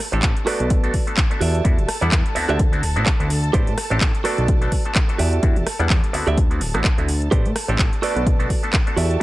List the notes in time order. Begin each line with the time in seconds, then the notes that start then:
Already playing: A4 A5
0.12 A1 C4 D4 G4 A4, muted clean electric guitar stroke, closed hi-hat
0.22 muted clean electric guitar stroke, kick, clap, closed hi-hat
0.37 closed hi-hat
0.46 A3 B3 D4 F#4 A4 B4 D5, cross-stick, open hi-hat
0.60 B1, closed hi-hat
0.70 kick, closed hi-hat
0.83 A3 B3 D4 F#4 A4, closed hi-hat
0.94 kick, open hi-hat
1.07 A3 B3 D4 F#4 A4, closed hi-hat
1.17 muted clean electric guitar stroke, kick, clap, closed hi-hat
1.30 A3 B3 D4 F#4 A4, muted clean electric guitar stroke, closed hi-hat
1.41 E2 F#4 G4 D5 E5, open hi-hat
1.55 closed hi-hat
1.65 E2 G3 B3 D4 E4 F#4, kick, closed hi-hat
1.78 E1, closed hi-hat
1.89 cross-stick, open hi-hat
2.01 E2 G3 B3 D4 E4 F#5, muted clean electric guitar stroke, closed hi-hat
2.12 E2, muted clean electric guitar stroke, kick, clap, closed hi-hat
2.26 closed hi-hat
2.35 D2 B3 C4 D4 E4 F#4, muted clean electric guitar stroke, open hi-hat
2.49 D2 F#4 G4 D5 E5, closed hi-hat
2.59 kick, closed hi-hat
2.72 B3 C4 D4 E4 F#4, closed hi-hat
2.83 D1, open hi-hat
2.96 A1 B3 C4 D4 E4 F#4, closed hi-hat
3.06 muted clean electric guitar stroke, kick, clap, closed hi-hat
3.20 D2 B3 C4 D4 E4 F#4, muted clean electric guitar stroke, closed hi-hat
3.30 open hi-hat
3.44 closed hi-hat
3.53 A1 B3 C4 D4 G4 A4 B4 C5 D5, kick, closed hi-hat
3.67 A2, closed hi-hat
3.78 cross-stick, open hi-hat
3.90 A1 C4 D4 G4 A4, muted clean electric guitar stroke, closed hi-hat
4.01 muted clean electric guitar stroke, kick, clap, closed hi-hat
4.15 closed hi-hat
4.24 A3 B3 D4 F#4 A4 B4 D5, cross-stick, open hi-hat
4.38 B1, closed hi-hat
4.48 kick, closed hi-hat
4.61 A3 B3 D4 F#4 A4, closed hi-hat
4.72 kick, open hi-hat
4.85 A3 B3 D4 F#4 A4, closed hi-hat
4.95 muted clean electric guitar stroke, kick, clap, closed hi-hat
5.08 A3 B3 D4 F#4 A4, muted clean electric guitar stroke, closed hi-hat
5.19 E2 F#4 G4 D5 E5, open hi-hat
5.33 closed hi-hat
5.43 E2 G3 B3 D4 E4 F#4, kick, closed hi-hat
5.56 E1, closed hi-hat
5.67 cross-stick, open hi-hat
5.79 E2 G3 B3 D4 E4 F#5, muted clean electric guitar stroke, closed hi-hat
5.90 muted clean electric guitar stroke, kick, clap, closed hi-hat
6.04 closed hi-hat
6.13 D2 B3 C4 D4 E4 F#4, muted clean electric guitar stroke, open hi-hat
6.27 D2 F#4 G4 D5 E5, closed hi-hat
6.38 kick, closed hi-hat
6.51 B3 C4 D4 E4 F#4, closed hi-hat
6.61 D1, open hi-hat
6.74 A1 B3 C4 D4 E4 F#4, cross-stick, closed hi-hat
6.84 muted clean electric guitar stroke, kick, clap, closed hi-hat
6.98 D2 B3 C4 D4 E4 F#4, muted clean electric guitar stroke, closed hi-hat
7.08 open hi-hat
7.22 closed hi-hat
7.31 A1 B3 C4 D4 G4 A4 B4 C5 D5 A5, kick, closed hi-hat
7.45 A2, closed hi-hat
7.56 cross-stick, open hi-hat
7.68 A1 C4 D4 G4 A4, muted clean electric guitar stroke, closed hi-hat
7.79 muted clean electric guitar stroke, kick, clap, closed hi-hat
7.93 closed hi-hat
8.02 A3 B3 D4 F#4 A4 B4 D5, open hi-hat
8.16 B1, closed hi-hat
8.27 kick, closed hi-hat
8.39 A3 B3 D4 F#4 A4, closed hi-hat
8.50 kick, open hi-hat
8.63 A3 B3 D4 F#4 A4, closed hi-hat
8.73 muted clean electric guitar stroke, kick, clap, closed hi-hat
8.86 A3 B3 D4 F#4 A4, muted clean electric guitar stroke, closed hi-hat
8.97 E2 F#4 G4 D5 E5, open hi-hat
9.11 closed hi-hat